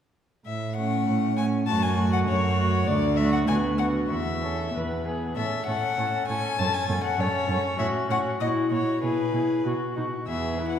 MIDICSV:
0, 0, Header, 1, 5, 480
1, 0, Start_track
1, 0, Key_signature, 3, "major"
1, 0, Tempo, 607287
1, 362, Time_signature, 2, 2, 24, 8
1, 2753, Tempo, 626305
1, 4193, Tempo, 607903
1, 6593, Tempo, 623053
1, 8433, End_track
2, 0, Start_track
2, 0, Title_t, "Violin"
2, 0, Program_c, 0, 40
2, 367, Note_on_c, 0, 76, 51
2, 593, Note_off_c, 0, 76, 0
2, 603, Note_on_c, 0, 78, 56
2, 1080, Note_off_c, 0, 78, 0
2, 1085, Note_on_c, 0, 80, 62
2, 1148, Note_off_c, 0, 80, 0
2, 1320, Note_on_c, 0, 81, 79
2, 1444, Note_on_c, 0, 80, 68
2, 1455, Note_off_c, 0, 81, 0
2, 1679, Note_off_c, 0, 80, 0
2, 1683, Note_on_c, 0, 78, 68
2, 1732, Note_off_c, 0, 78, 0
2, 1807, Note_on_c, 0, 73, 74
2, 2269, Note_on_c, 0, 74, 77
2, 2281, Note_off_c, 0, 73, 0
2, 2505, Note_on_c, 0, 76, 71
2, 2517, Note_off_c, 0, 74, 0
2, 2623, Note_off_c, 0, 76, 0
2, 2628, Note_on_c, 0, 78, 63
2, 2677, Note_off_c, 0, 78, 0
2, 2747, Note_on_c, 0, 80, 74
2, 2809, Note_off_c, 0, 80, 0
2, 2983, Note_on_c, 0, 78, 62
2, 3045, Note_off_c, 0, 78, 0
2, 3229, Note_on_c, 0, 76, 50
2, 3704, Note_off_c, 0, 76, 0
2, 4195, Note_on_c, 0, 76, 59
2, 4419, Note_off_c, 0, 76, 0
2, 4431, Note_on_c, 0, 78, 70
2, 4908, Note_off_c, 0, 78, 0
2, 4918, Note_on_c, 0, 80, 74
2, 5162, Note_on_c, 0, 81, 84
2, 5174, Note_off_c, 0, 80, 0
2, 5278, Note_on_c, 0, 80, 73
2, 5290, Note_off_c, 0, 81, 0
2, 5511, Note_off_c, 0, 80, 0
2, 5516, Note_on_c, 0, 78, 67
2, 5643, Note_on_c, 0, 73, 68
2, 5655, Note_off_c, 0, 78, 0
2, 6104, Note_off_c, 0, 73, 0
2, 6109, Note_on_c, 0, 76, 66
2, 6172, Note_off_c, 0, 76, 0
2, 6360, Note_on_c, 0, 78, 68
2, 6423, Note_off_c, 0, 78, 0
2, 6597, Note_on_c, 0, 75, 68
2, 6658, Note_off_c, 0, 75, 0
2, 6836, Note_on_c, 0, 73, 50
2, 7066, Note_off_c, 0, 73, 0
2, 7071, Note_on_c, 0, 71, 52
2, 7547, Note_off_c, 0, 71, 0
2, 8038, Note_on_c, 0, 76, 51
2, 8332, Note_off_c, 0, 76, 0
2, 8355, Note_on_c, 0, 78, 54
2, 8433, Note_off_c, 0, 78, 0
2, 8433, End_track
3, 0, Start_track
3, 0, Title_t, "Violin"
3, 0, Program_c, 1, 40
3, 610, Note_on_c, 1, 61, 39
3, 1083, Note_off_c, 1, 61, 0
3, 1095, Note_on_c, 1, 61, 37
3, 1327, Note_off_c, 1, 61, 0
3, 1334, Note_on_c, 1, 66, 42
3, 1562, Note_off_c, 1, 66, 0
3, 1567, Note_on_c, 1, 66, 50
3, 2034, Note_off_c, 1, 66, 0
3, 2048, Note_on_c, 1, 66, 48
3, 2276, Note_off_c, 1, 66, 0
3, 2525, Note_on_c, 1, 66, 51
3, 2754, Note_off_c, 1, 66, 0
3, 2765, Note_on_c, 1, 66, 44
3, 2991, Note_off_c, 1, 66, 0
3, 3007, Note_on_c, 1, 66, 35
3, 3235, Note_off_c, 1, 66, 0
3, 3482, Note_on_c, 1, 69, 37
3, 3715, Note_off_c, 1, 69, 0
3, 3728, Note_on_c, 1, 71, 41
3, 3946, Note_off_c, 1, 71, 0
3, 3970, Note_on_c, 1, 68, 40
3, 4196, Note_off_c, 1, 68, 0
3, 4200, Note_on_c, 1, 69, 42
3, 4433, Note_off_c, 1, 69, 0
3, 4446, Note_on_c, 1, 69, 41
3, 4678, Note_off_c, 1, 69, 0
3, 4692, Note_on_c, 1, 69, 40
3, 4922, Note_off_c, 1, 69, 0
3, 4929, Note_on_c, 1, 69, 44
3, 5158, Note_off_c, 1, 69, 0
3, 5164, Note_on_c, 1, 69, 53
3, 5394, Note_off_c, 1, 69, 0
3, 5403, Note_on_c, 1, 69, 48
3, 5634, Note_off_c, 1, 69, 0
3, 5640, Note_on_c, 1, 69, 52
3, 5871, Note_off_c, 1, 69, 0
3, 5875, Note_on_c, 1, 69, 48
3, 6107, Note_off_c, 1, 69, 0
3, 6110, Note_on_c, 1, 66, 57
3, 6346, Note_off_c, 1, 66, 0
3, 6358, Note_on_c, 1, 66, 50
3, 6592, Note_off_c, 1, 66, 0
3, 6597, Note_on_c, 1, 66, 47
3, 6829, Note_off_c, 1, 66, 0
3, 6832, Note_on_c, 1, 66, 40
3, 7068, Note_off_c, 1, 66, 0
3, 7075, Note_on_c, 1, 68, 39
3, 7312, Note_off_c, 1, 68, 0
3, 7317, Note_on_c, 1, 68, 36
3, 7553, Note_off_c, 1, 68, 0
3, 7567, Note_on_c, 1, 66, 36
3, 7798, Note_off_c, 1, 66, 0
3, 7802, Note_on_c, 1, 66, 33
3, 8037, Note_off_c, 1, 66, 0
3, 8044, Note_on_c, 1, 68, 35
3, 8278, Note_on_c, 1, 71, 37
3, 8289, Note_off_c, 1, 68, 0
3, 8433, Note_off_c, 1, 71, 0
3, 8433, End_track
4, 0, Start_track
4, 0, Title_t, "Viola"
4, 0, Program_c, 2, 41
4, 609, Note_on_c, 2, 57, 37
4, 1083, Note_off_c, 2, 57, 0
4, 1091, Note_on_c, 2, 57, 40
4, 1324, Note_off_c, 2, 57, 0
4, 1333, Note_on_c, 2, 57, 42
4, 1564, Note_off_c, 2, 57, 0
4, 1575, Note_on_c, 2, 57, 45
4, 2038, Note_off_c, 2, 57, 0
4, 2043, Note_on_c, 2, 57, 49
4, 2274, Note_off_c, 2, 57, 0
4, 2516, Note_on_c, 2, 57, 51
4, 2750, Note_off_c, 2, 57, 0
4, 2761, Note_on_c, 2, 59, 45
4, 2989, Note_off_c, 2, 59, 0
4, 2995, Note_on_c, 2, 59, 42
4, 3228, Note_off_c, 2, 59, 0
4, 3472, Note_on_c, 2, 61, 35
4, 3709, Note_off_c, 2, 61, 0
4, 3720, Note_on_c, 2, 59, 33
4, 3954, Note_off_c, 2, 59, 0
4, 3961, Note_on_c, 2, 59, 33
4, 4191, Note_off_c, 2, 59, 0
4, 4199, Note_on_c, 2, 61, 47
4, 4433, Note_off_c, 2, 61, 0
4, 4437, Note_on_c, 2, 61, 42
4, 4674, Note_off_c, 2, 61, 0
4, 4679, Note_on_c, 2, 61, 44
4, 4916, Note_off_c, 2, 61, 0
4, 4926, Note_on_c, 2, 61, 44
4, 5156, Note_off_c, 2, 61, 0
4, 5162, Note_on_c, 2, 61, 50
4, 5391, Note_off_c, 2, 61, 0
4, 5396, Note_on_c, 2, 61, 51
4, 5630, Note_off_c, 2, 61, 0
4, 5638, Note_on_c, 2, 61, 55
4, 5869, Note_off_c, 2, 61, 0
4, 5875, Note_on_c, 2, 61, 50
4, 6107, Note_off_c, 2, 61, 0
4, 6111, Note_on_c, 2, 61, 58
4, 6347, Note_off_c, 2, 61, 0
4, 6353, Note_on_c, 2, 61, 46
4, 6590, Note_off_c, 2, 61, 0
4, 6598, Note_on_c, 2, 64, 47
4, 6829, Note_off_c, 2, 64, 0
4, 6839, Note_on_c, 2, 64, 40
4, 7069, Note_off_c, 2, 64, 0
4, 7073, Note_on_c, 2, 64, 41
4, 7306, Note_off_c, 2, 64, 0
4, 7311, Note_on_c, 2, 64, 36
4, 7550, Note_off_c, 2, 64, 0
4, 7556, Note_on_c, 2, 66, 46
4, 7618, Note_off_c, 2, 66, 0
4, 7798, Note_on_c, 2, 63, 39
4, 7860, Note_off_c, 2, 63, 0
4, 8043, Note_on_c, 2, 59, 39
4, 8274, Note_on_c, 2, 64, 39
4, 8285, Note_off_c, 2, 59, 0
4, 8433, Note_off_c, 2, 64, 0
4, 8433, End_track
5, 0, Start_track
5, 0, Title_t, "Cello"
5, 0, Program_c, 3, 42
5, 359, Note_on_c, 3, 45, 50
5, 792, Note_off_c, 3, 45, 0
5, 852, Note_on_c, 3, 45, 50
5, 1274, Note_off_c, 3, 45, 0
5, 1327, Note_on_c, 3, 42, 59
5, 1748, Note_off_c, 3, 42, 0
5, 1799, Note_on_c, 3, 42, 66
5, 2220, Note_off_c, 3, 42, 0
5, 2275, Note_on_c, 3, 38, 70
5, 2695, Note_off_c, 3, 38, 0
5, 2746, Note_on_c, 3, 38, 61
5, 3170, Note_off_c, 3, 38, 0
5, 3225, Note_on_c, 3, 40, 49
5, 3655, Note_off_c, 3, 40, 0
5, 3715, Note_on_c, 3, 40, 39
5, 4138, Note_off_c, 3, 40, 0
5, 4193, Note_on_c, 3, 45, 51
5, 4256, Note_off_c, 3, 45, 0
5, 4437, Note_on_c, 3, 45, 49
5, 4500, Note_off_c, 3, 45, 0
5, 4681, Note_on_c, 3, 45, 49
5, 4745, Note_off_c, 3, 45, 0
5, 4925, Note_on_c, 3, 45, 48
5, 4988, Note_off_c, 3, 45, 0
5, 5167, Note_on_c, 3, 42, 58
5, 5230, Note_off_c, 3, 42, 0
5, 5401, Note_on_c, 3, 42, 57
5, 5465, Note_off_c, 3, 42, 0
5, 5635, Note_on_c, 3, 42, 57
5, 5698, Note_off_c, 3, 42, 0
5, 5870, Note_on_c, 3, 42, 57
5, 5933, Note_off_c, 3, 42, 0
5, 6111, Note_on_c, 3, 45, 59
5, 6174, Note_off_c, 3, 45, 0
5, 6350, Note_on_c, 3, 45, 53
5, 6413, Note_off_c, 3, 45, 0
5, 6593, Note_on_c, 3, 46, 48
5, 6654, Note_off_c, 3, 46, 0
5, 6827, Note_on_c, 3, 46, 46
5, 6889, Note_off_c, 3, 46, 0
5, 7074, Note_on_c, 3, 47, 49
5, 7135, Note_off_c, 3, 47, 0
5, 7311, Note_on_c, 3, 47, 41
5, 7373, Note_off_c, 3, 47, 0
5, 7558, Note_on_c, 3, 47, 42
5, 7619, Note_off_c, 3, 47, 0
5, 7799, Note_on_c, 3, 47, 42
5, 7861, Note_off_c, 3, 47, 0
5, 8037, Note_on_c, 3, 40, 49
5, 8433, Note_off_c, 3, 40, 0
5, 8433, End_track
0, 0, End_of_file